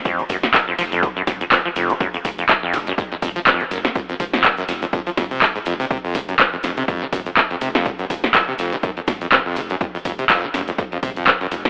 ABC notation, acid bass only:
X:1
M:4/4
L:1/16
Q:"Swing 16ths" 1/4=123
K:Ebdor
V:1 name="Acid bass" clef=bass
F,, F, G,, F,, F,, F,, F, F,, F, G,, F,, F,, F,, F, F,, F, | G,, F,, F,, F,, F, F,, F, G,, F,, F,, F,, F, F,, F, G,, F,, | F,, F,, F, F,, F, G,, F,, F,, F,, F, F,, C, F,, A,, F,, C, | C, F,, F, G,, F,, F,, F,, C, F,, F, G,, F,, F,, F,, C, F,, |
F, G,, F,, F,, F,, C, F,, F, G,, F,, F,, F,, C, F,, F, G,, | F,, F,, F,, C, F,, F, G,, F,, F,, F,, C, F,, F, G,, F,, F,, |]